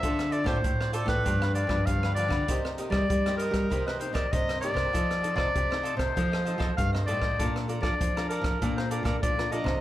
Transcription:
<<
  \new Staff \with { instrumentName = "Clarinet" } { \time 4/4 \key c \dorian \tempo 4 = 98 e''8 d''16 c''8. a'16 b'8. d''8 f''8 d''8~ | d''16 r8 d''8. bes'8. b'16 c''16 d''16 ees''8 d''8~ | d''8. d''4 c''4~ c''16 f''8 d''8~ | d''16 r8 d''8. bes'8. c''16 d''16 bes'16 d''8 ees''8 | }
  \new Staff \with { instrumentName = "Cavaquinho" } { \time 4/4 \key c \dorian <f' a' c'' d''>8 <f' a' c'' d''>16 <f' a' c'' d''>16 r16 <a' c'' d''>16 <f' a' c'' d''>8 <d' g' b' f''>16 <g' b' f''>16 <d' g' b' f''>16 <d' g' b' f''>16 r16 <g' b' f''>16 <d' g' b' f''>16 <g' b' f''>16 | <ees' bes' c'' ees''>8 <ees' bes' c'' ees''>16 <ees' bes' c'' ees''>16 r16 <bes' c'' ees''>16 <ees' bes' c'' ees''>8 <ees' bes' c'' ees''>16 <bes' c'' ees''>16 <ees' bes' c'' ees''>16 <ees' bes' c'' ees''>16 r16 <bes' c'' ees''>16 <ees' bes' c'' ees''>16 <bes' c'' ees''>16 | <f' a' c'' ees''>8 <f' a' c'' ees''>16 <f' a' c'' ees''>16 r16 <a' c'' ees''>16 <f' a' c'' ees''>8 <f' a' c'' ees''>16 <a' c'' ees''>16 <f' a' c'' ees''>16 <f' a' c'' ees''>16 r16 <a' c'' ees''>16 <f' a' c'' ees''>16 <a' c'' ees''>16 | <a' d'' f'' bes''>8 <a' d'' f'' bes''>16 <a' d'' f'' bes''>16 r16 <d'' f'' bes''>16 <a' d'' f'' bes''>8 <a' d'' f'' bes''>16 <d'' f'' bes''>16 <a' d'' f'' bes''>16 <a' d'' f'' bes''>16 r16 <d'' f'' bes''>16 <a' d'' f'' bes''>16 <d'' f'' bes''>16 | }
  \new Staff \with { instrumentName = "Nylon-string guitar" } { \time 4/4 \key c \dorian << { <c' f' a'>8 r16 <c' f' a'>8. <c' f' a'>16 r16 <f b d'>8. <f b d'>8. <f b d'>16 r16 | <bes ees' g'>8 <bes ees' g'>8 r16 <bes ees' g'>8. <bes ees' g'>8 <bes ees' g'>8. r16 <bes ees' g'>16 r16 | <c' ees' a'>16 r16 <c' ees' a'>8 r16 <c' ees' a'>8. <c' ees' a'>16 r16 <c' ees' a'>8. r16 <c' ees' a'>8 | <d' f' a'>8 <d' f' a'>16 <d' f' a'>8 <d' f' a'>8. <d' f' a'>16 r16 <d' f' a'>8 <d' f' a'>16 <d' f' a'>16 <d' f' a'>16 r16 | } \\ { d4 a,4 g,4 d4 | c4 g,4 c4 g,4 | f4 c4 f4 c4 | bes4 f4 bes4 f4 | } >> }
  \new Staff \with { instrumentName = "Nylon-string guitar" } { \clef bass \time 4/4 \key c \dorian d8. a,16 a,8. a,16 g,8. g,16 g,8. d16 | c8. g16 g8. g16 c8. c16 c8. c16 | f8. c16 c8. c16 f8. f16 g,8 a,8 | bes,8. f16 f8. f16 bes,8. bes,16 bes,8. c16 | }
  \new DrumStaff \with { instrumentName = "Drums" } \drummode { \time 4/4 <hh bd>16 <hh ss>16 hh16 <bd ss>16 <hh bd>16 ss16 hh16 <hh bd ss>16 <hh bd>16 ss16 hh16 <bd ss>16 <hh bd>16 ss16 hh16 <bd ss>16 | <hh bd>16 ss16 hh16 <bd ss>16 <hh bd>16 <hh ss>16 hh16 <hh bd ss>16 <hh bd>16 ss16 hh16 <hh bd ss>16 <hh bd>16 <hh ss>16 hh16 <bd ss>16 | <hh bd>16 <hh ss>16 hh16 <bd ss>16 <hh bd>16 ss16 hh16 <hh bd ss>16 <hh bd>16 ss16 hh16 <bd ss>16 <hh bd>16 ss16 hh16 <bd ss>16 | <hh bd>16 ss16 hh16 <bd ss>16 <hh bd>16 <hh ss>16 hh16 <hh bd ss>16 <hh bd>16 ss16 hh16 <hh bd ss>16 <hh bd>16 <hh ss>16 hh16 <bd ss>16 | }
>>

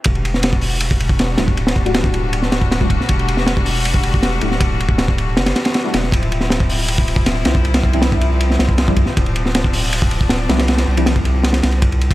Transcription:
<<
  \new Staff \with { instrumentName = "Synth stab" } { \time 4/4 \key e \phrygian \tempo 4 = 158 r2. r8 <g a d' e' fis'>16 r16 | r8. <g a d' e' fis'>2~ <g a d' e' fis'>8 <g a d' e' fis'>16 r8 | r2. r8 <g a d' e' fis'>16 r16 | r2. r16 <g a d' e' fis'>16 <g a d' e' fis'>16 r16 |
r2. r8 <f g c' d' e'>16 r16 | r8. <f g c' d' e'>2~ <f g c' d' e'>8 <f g c' d' e'>16 r8 | r2. r8 <f g c' d' e'>16 r16 | r8. <f g c' d' e'>2~ <f g c' d' e'>8 r8. | }
  \new Staff \with { instrumentName = "String section" } { \time 4/4 \key e \phrygian << { fis'1~ | fis'1~ | fis'1~ | fis'1 |
e'1~ | e'1 | d'1~ | d'1 | } \\ { <g a d'>1~ | <g a d'>1~ | <g a d'>1~ | <g a d'>1 |
<f g c'>1~ | <f g c'>1~ | <f g c'>1~ | <f g c'>1 | } >> }
  \new Staff \with { instrumentName = "Sub bass" } { \clef bass \time 4/4 \key e \phrygian e,,2~ e,,8 e,,4 d,,8~ | d,,8 d,,2 d,,4 r8 | e,,2~ e,,8 e,,4 d,,8~ | d,,8 d,,4. fis,,8 r4 e,,8 |
d,,2~ d,,8 d,,4 c,8~ | c,8 c,2 c,4 r8 | d,,2~ d,,8 d,,4 c,8~ | c,8 c,2 c,4 r8 | }
  \new DrumStaff \with { instrumentName = "Drums" } \drummode { \time 4/4 <bd cymr>16 cymr16 cymr16 sn16 <cymr sn>16 bd16 hho8 cymr16 bd16 cymr16 bd16 <cymr sn>8 <cymr sn>16 bd16 | cymr16 <cymr sn>16 bd16 cymr16 <cymr sn>16 bd16 cymr8 cymr16 sn16 <cymr sn>16 bd16 <cymr sn>16 bd16 <bd cymr>16 sn16 | <bd cymr>16 cymr16 cymr16 sn16 <cymr sn>16 bd16 hho8 cymr16 bd16 cymr16 bd16 <cymr sn>8 cymr16 sn16 | <bd cymr>8 cymr16 bd16 <cymr sn>16 bd16 cymr8 <cymr sn>16 <cymr sn>16 <cymr sn>16 <cymr sn>16 <cymr sn>8 <cymr sn>16 sn16 |
<bd cymr>16 cymr16 cymr16 sn16 <cymr sn>16 bd16 hho8 cymr16 bd16 cymr16 bd16 <cymr sn>8 <cymr sn>16 bd16 | cymr16 <cymr sn>16 bd16 cymr16 <cymr sn>16 bd16 cymr8 cymr16 sn16 <cymr sn>16 bd16 <cymr sn>16 bd16 <bd cymr>16 sn16 | <bd cymr>16 cymr16 cymr16 sn16 <cymr sn>16 bd16 hho8 cymr16 bd16 cymr16 bd16 <cymr sn>8 <cymr sn>16 <cymr sn>16 | <cymr sn>16 <cymr sn>8 cymr16 <cymr sn>16 bd16 cymr8 <cymr sn>16 <cymr sn>16 <cymr sn>16 cymr16 <bd cymr>16 cymr16 cymr16 <bd cymr>16 | }
>>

